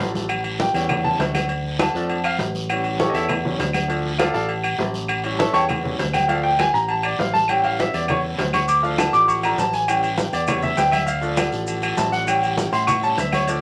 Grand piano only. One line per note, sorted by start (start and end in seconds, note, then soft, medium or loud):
0.00 0.25 F3 medium
0.00 0.26 A3 soft
0.00 0.26 D4 medium
0.60 1.01 G5 medium
0.74 1.46 E3 medium
0.74 1.46 G3 soft
0.74 1.46 C#4 medium
1.04 1.19 A5 loud
1.81 2.22 A5 medium
1.95 2.15 F3 medium
1.95 2.15 A3 medium
1.95 2.15 D4 medium
2.25 2.34 F5 loud
2.70 3.12 E3 medium
2.70 3.13 G3 soft
2.70 2.99 C#4 medium
3.00 3.15 C#4 medium
3.00 3.14 G4 medium
3.00 3.13 A4 medium
3.00 3.13 C#5 medium
3.09 3.12 D#5 medium
3.14 3.29 E4 medium
3.14 3.29 A4 medium
3.14 3.29 C#5 medium
3.14 3.29 E5 medium
3.44 3.58 E3 soft
3.44 3.58 G3 soft
3.44 3.58 C#4 medium
3.88 4.09 F3 medium
3.88 4.09 A3 soft
3.88 4.09 D4 medium
4.18 4.34 F4 medium
4.18 4.33 A4 medium
4.18 4.33 D5 medium
4.18 4.33 F5 medium
4.34 4.49 A4 medium
4.34 4.49 D5 medium
4.34 4.49 F5 medium
4.34 4.48 A5 medium
5.24 5.67 E3 medium
5.24 5.67 G3 medium
5.24 5.67 C#4 medium
5.39 5.54 A4 medium
5.39 5.52 C#5 medium
5.39 5.54 E5 medium
5.39 5.52 A5 medium
5.53 5.63 C#5 medium
5.53 5.63 G5 medium
5.53 5.63 A5 medium
5.53 5.63 C#6 loud
5.82 5.97 E3 medium
5.82 5.97 G3 soft
5.82 5.97 C#4 medium
6.13 6.28 G5 medium
6.28 6.48 F3 medium
6.28 6.49 A3 soft
6.28 6.49 D4 medium
6.28 6.43 F5 medium
6.43 6.58 G5 loud
6.60 6.74 G#5 loud
6.74 6.88 A#5 loud
6.90 7.04 A5 medium
7.05 7.19 D5 medium
7.20 7.34 F5 medium
7.34 7.48 A5 loud
7.49 8.65 E3 medium
7.49 8.65 G3 medium
7.49 8.65 C#4 medium
7.49 7.64 G5 medium
7.64 7.79 F5 medium
7.80 7.94 E5 medium
7.94 8.09 D5 medium
8.10 8.19 C#5 medium
8.54 8.68 C#6 medium
8.68 8.83 D6 loud
8.83 9.43 F3 medium
8.83 9.43 A3 medium
8.83 9.44 D4 medium
8.83 8.98 F5 medium
8.98 9.13 A5 medium
9.13 9.28 D6 loud
9.28 9.43 C#6 medium
9.44 9.57 F3 soft
9.44 9.57 A3 soft
9.44 9.58 D4 medium
9.44 9.59 A#5 loud
9.60 9.74 A5 medium
9.74 9.88 G#5 medium
9.88 10.08 E3 medium
9.88 10.08 G3 soft
9.88 10.09 C#4 medium
9.88 10.30 G5 medium
10.33 10.48 D5 medium
10.48 10.62 E3 medium
10.48 10.62 G3 soft
10.48 10.62 C#4 medium
10.48 10.63 C#5 medium
10.63 10.77 E5 medium
10.77 10.92 G5 loud
10.91 11.07 E5 medium
11.07 11.49 F5 medium
11.21 12.23 F3 medium
11.21 12.23 A3 medium
11.21 12.24 D4 medium
11.97 12.12 A5 medium
12.12 12.27 F#5 medium
12.26 13.02 E3 medium
12.26 13.02 G3 medium
12.26 13.02 C#4 medium
12.26 12.69 G5 medium
12.73 12.87 C6 loud
12.87 13.02 C#6 loud
13.03 13.16 E3 soft
13.03 13.17 G3 soft
13.03 13.17 C#4 medium
13.03 13.18 A5 loud
13.19 13.33 E5 medium
13.34 13.48 C#5 loud
13.48 13.61 F3 medium
13.48 13.61 A3 soft
13.48 13.61 D4 medium
13.48 13.61 D5 medium